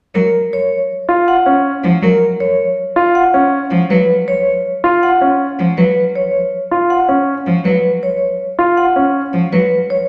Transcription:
0.15 0.29 F#3 medium
0.15 0.39 A#4 medium
0.53 0.77 C#5 medium
1.09 1.33 F4 soft
1.28 1.52 F#5 medium
1.46 1.71 C#4 soft
1.84 1.98 F3 medium
2.02 2.16 F#3 medium
2.02 2.27 A#4 medium
2.40 2.65 C#5 medium
2.96 3.21 F4 medium
3.15 3.39 F#5 medium
3.34 3.58 C#4 soft
3.71 3.85 F3 medium
3.90 4.04 F#3 medium
3.90 4.15 B4 medium
4.28 4.52 C#5 medium
4.84 5.08 F4 medium
5.03 5.27 F#5 medium
5.21 5.46 C#4 soft
5.59 5.73 F3 medium
5.78 5.92 F#3 medium
5.78 6.02 B4 medium
6.16 6.40 C#5 soft
6.71 6.96 F4 soft
6.90 7.14 F#5 medium
7.09 7.33 C#4 soft
7.47 7.60 F3 medium
7.65 7.79 F#3 medium
7.65 7.89 B4 medium
8.03 8.27 C#5 soft
8.59 8.83 F4 soft
8.77 9.02 F#5 medium
8.96 9.21 C#4 soft
9.33 9.48 F3 medium
9.52 9.66 F#3 medium
9.52 9.77 B4 medium
9.90 10.08 C#5 medium

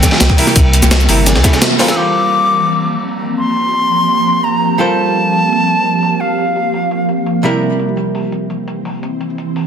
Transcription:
0.00 0.35 C3 medium
0.00 1.93 E3 medium
0.00 0.36 G3 medium
0.00 1.93 A#3 medium
0.00 1.93 C4 medium
0.00 0.36 E4 medium
0.00 0.37 A#4 medium
0.00 1.58 G5 loud
0.00 kick medium
0.00 snare loud
0.00 closed hi-hat medium
0.00 ride medium
0.00 cabasa medium
0.11 snare soft
0.11 snare loud
0.11 ride medium
0.20 0.29 C2 loud
0.20 snare loud
0.20 closed hi-hat loud
0.20 ride medium
0.20 cabasa medium
0.30 kick loud
0.30 snare soft
0.37 1.06 C3 medium
0.37 1.07 G3 medium
0.37 1.07 E4 medium
0.37 1.07 A#4 medium
0.37 open hi-hat medium
0.37 ride medium
0.47 snare soft
0.47 cabasa soft
0.56 0.81 C2 loud
0.56 kick loud
0.56 closed hi-hat loud
0.56 ride medium
0.56 cabasa medium
0.73 closed hi-hat medium
0.73 ride medium
0.82 1.07 C2 loud
0.82 snare soft
0.82 cabasa medium
0.91 snare loud
0.91 closed hi-hat loud
0.91 ride medium
0.91 cabasa soft
0.99 ride soft
0.99 cabasa soft
1.08 1.37 G1 medium
1.08 1.42 C3 medium
1.08 1.42 G3 medium
1.08 1.42 E4 medium
1.08 1.43 A#4 medium
1.08 open hi-hat medium
1.08 ride medium
1.08 cabasa soft
1.26 snare loud
1.26 closed hi-hat medium
1.26 ride medium
1.26 cabasa soft
1.35 1.43 C2 loud
1.35 snare loud
1.35 snare medium
1.35 ride medium
1.43 1.77 C3 medium
1.43 1.77 G3 medium
1.43 1.77 E4 medium
1.43 1.78 A4 medium
1.43 kick loud
1.43 snare loud
1.43 closed hi-hat medium
1.43 ride medium
1.43 cabasa medium
1.53 snare loud
1.53 ride medium
1.53 cabasa soft
1.62 snare loud
1.62 closed hi-hat medium
1.62 cabasa medium
1.79 1.94 G3 medium
1.79 1.95 F4 medium
1.79 2.15 A4 medium
1.79 1.96 A#4 medium
1.79 1.97 C5 loud
1.79 snare loud
1.79 snare soft
1.79 open hi-hat medium
1.79 ride medium
1.88 1.98 E6 medium
1.88 snare loud
1.88 ride medium
1.88 cabasa soft
1.96 7.40 F3 medium
1.96 4.77 G3 medium
1.96 7.40 A#3 medium
1.96 7.40 C4 medium
1.96 4.77 F4 medium
1.96 4.77 G4 medium
1.96 7.40 G4 medium
1.96 4.78 A#4 medium
1.96 4.78 C5 medium
1.96 4.76 A#5 medium
1.96 3.03 D6 loud
2.32 closed hi-hat medium
2.50 open hi-hat medium
2.68 closed hi-hat medium
2.85 closed hi-hat medium
3.03 closed hi-hat medium
3.21 open hi-hat medium
3.38 4.45 C6 loud
3.38 closed hi-hat medium
3.56 closed hi-hat medium
3.65 cabasa soft
3.73 closed hi-hat medium
3.73 cabasa soft
3.91 open hi-hat medium
4.09 closed hi-hat medium
4.26 closed hi-hat medium
4.44 4.81 A#5 medium
4.44 closed hi-hat medium
4.62 open hi-hat medium
4.78 7.41 G3 medium
4.78 7.42 F4 medium
4.78 7.42 A4 medium
4.78 7.42 A#4 medium
4.78 7.43 C5 medium
4.78 6.22 A5 loud
4.78 closed hi-hat medium
5.15 closed hi-hat medium
5.32 open hi-hat medium
5.50 closed hi-hat medium
5.68 closed hi-hat medium
5.68 cabasa soft
5.85 closed hi-hat medium
6.03 open hi-hat medium
6.20 7.44 F5 medium
6.20 closed hi-hat medium
6.38 closed hi-hat medium
6.47 cabasa medium
6.56 closed hi-hat medium
6.56 cabasa soft
6.74 open hi-hat medium
6.91 closed hi-hat medium
6.91 cabasa soft
7.09 closed hi-hat medium
7.09 cabasa medium
7.26 closed hi-hat medium
7.26 cabasa soft
7.43 9.67 C3 medium
7.43 9.67 E3 medium
7.43 9.67 G3 medium
7.43 9.67 C4 medium
7.43 9.67 E4 medium
7.43 9.67 A#4 medium
7.43 open hi-hat medium
7.62 closed hi-hat medium
7.62 cabasa soft
7.79 closed hi-hat medium
7.89 cabasa medium
7.97 closed hi-hat medium
7.97 cabasa soft
8.15 open hi-hat medium
8.15 cabasa soft
8.32 closed hi-hat medium
8.32 cabasa soft
8.50 closed hi-hat medium
8.50 cabasa medium
8.68 closed hi-hat medium
8.68 cabasa soft
8.85 open hi-hat medium
8.94 cabasa soft
9.03 closed hi-hat medium
9.03 cabasa soft
9.21 closed hi-hat medium
9.30 cabasa medium
9.38 closed hi-hat medium
9.38 cabasa soft
9.56 open hi-hat medium
9.56 cabasa soft

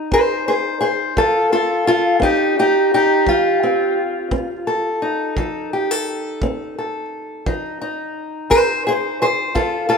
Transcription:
0.00 1.18 D#4 soft
0.11 0.75 C4 medium
0.11 0.18 G#4 medium
0.11 0.47 C5 medium
0.11 kick medium
0.48 0.53 G#4 medium
0.48 0.80 C5 medium
0.81 0.87 G#4 medium
0.81 1.17 C5 medium
1.17 1.80 F3 medium
1.17 1.51 F4 medium
1.17 1.51 A4 medium
1.17 kick medium
1.52 1.86 F4 medium
1.52 1.87 A4 medium
1.87 2.22 F4 medium
1.87 2.23 A4 medium
2.20 2.84 C4 medium
2.20 2.57 D#4 medium
2.20 2.57 G4 medium
2.20 kick medium
2.59 2.93 D#4 medium
2.59 2.93 G4 medium
2.94 3.28 D#4 medium
2.94 3.98 G4 medium
3.26 3.89 F3 medium
3.26 5.02 F4 medium
3.26 kick medium
3.63 4.31 C4 soft
4.31 4.95 C4 medium
4.31 kick medium
4.67 5.38 A4 medium
5.02 7.47 D#4 soft
5.37 6.00 F3 medium
5.37 5.73 A4 medium
5.37 kick medium
5.73 5.91 G4 soft
5.91 6.77 A4 soft
6.42 7.05 C4 medium
6.42 kick medium
6.79 7.50 A4 soft
7.46 8.09 F3 medium
7.46 7.81 D#4 soft
7.46 kick medium
7.81 9.54 D#4 medium
8.50 9.13 C4 medium
8.50 8.56 G#4 medium
8.50 8.86 C5 medium
8.50 kick medium
8.87 8.92 G#4 medium
8.87 9.21 C5 medium
9.22 9.27 G#4 medium
9.22 9.56 C5 medium
9.55 9.98 F3 medium
9.55 9.88 F4 medium
9.55 9.88 A4 medium
9.55 kick medium
9.89 9.98 F4 medium
9.89 9.98 A4 medium

